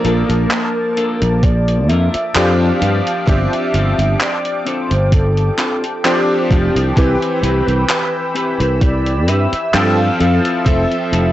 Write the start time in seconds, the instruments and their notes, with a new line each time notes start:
Already playing: electric grand piano F3 A#3 D4 A4 A#4, analog synth pad A#3 A5 D6, soft synth lead A#4
0.04 fretless electric bass A#1, clean electric guitar A#3 D4 F4 A4, closed hi-hat
0.29 fretless electric bass A#1, closed hi-hat
0.51 clap, closed hi-hat
0.96 clean electric guitar A#3 D4 F4 A4, closed hi-hat
1.21 fretless electric bass A#1, closed hi-hat
1.43 soft synth lead D5, kick, closed hi-hat
1.68 closed hi-hat
1.89 fretless electric bass F2, clean electric guitar A#3 D4 F4 A#4, soft synth lead E5, closed hi-hat
2.14 muted fretless electric bass stroke, closed hi-hat
2.34 fretless electric bass F2, electric grand piano F3 C4 D4 G4, soft synth lead F5, clap, closed hi-hat
2.81 fretless electric bass G2, clean electric guitar C4 D4 F4 G4, analog synth pad G5, closed hi-hat
3.07 closed hi-hat
3.26 fretless electric bass G1, electric grand piano F3 C4 D4 G4, soft synth lead E5, kick, closed hi-hat
3.53 closed hi-hat
3.73 fretless electric bass G1, clean electric guitar C4 D4 F4 G4, closed hi-hat
3.98 fretless electric bass G1, closed hi-hat
4.20 soft synth lead D5, clap, closed hi-hat
4.45 closed hi-hat
4.65 clean electric guitar C4 D4 F4 A4, soft synth lead C5, closed hi-hat
4.91 fretless electric bass G1, closed hi-hat
5.12 soft synth lead A4, kick, closed hi-hat
5.37 closed hi-hat
5.58 clean electric guitar C4 D4 F4 A4, clap, closed hi-hat
5.84 closed hi-hat
6.04 electric grand piano F3 C4 D4 G4, clap, closed hi-hat
6.50 fretless electric bass F1, clean electric guitar C4 D4 F4 G4, kick, closed hi-hat
6.75 fretless electric bass C2, closed hi-hat
6.96 fretless electric bass C2, electric grand piano E3 C4 G4 B4, soft synth lead B4, analog synth pad B5 E6, kick, closed hi-hat
7.22 closed hi-hat
7.42 fretless electric bass C2, clean electric guitar C4 E4 G4 B4, closed hi-hat
7.67 fretless electric bass C2, closed hi-hat
7.89 clap, closed hi-hat
8.34 clean electric guitar C4 E4 G4 B4, closed hi-hat
8.60 fretless electric bass C2, closed hi-hat
8.81 soft synth lead D5, kick, closed hi-hat
9.06 closed hi-hat
9.27 fretless electric bass G2, clean electric guitar C4 E4 G4 B4, soft synth lead E5, closed hi-hat
9.53 muted fretless electric bass stroke, closed hi-hat
9.73 fretless electric bass G2, electric grand piano F3 C4 A4 G5, soft synth lead F5, clap, closed hi-hat
10.19 fretless electric bass F2, clean electric guitar C4 E4 F4 A4, analog synth pad A5, closed hi-hat
10.45 closed hi-hat
10.65 fretless electric bass F1, electric grand piano F3 C4 A4 E5, soft synth lead E5, kick, closed hi-hat
10.92 closed hi-hat
11.12 fretless electric bass F1, clean electric guitar C4 E4 F4 A4, closed hi-hat